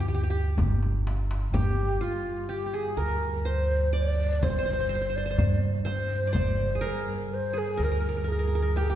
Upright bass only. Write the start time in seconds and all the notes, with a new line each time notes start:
Already playing: D2
0.57 G1
1.52 G1
2.97 D2
4.41 G1
5.38 G2
6.34 G1
7.79 D2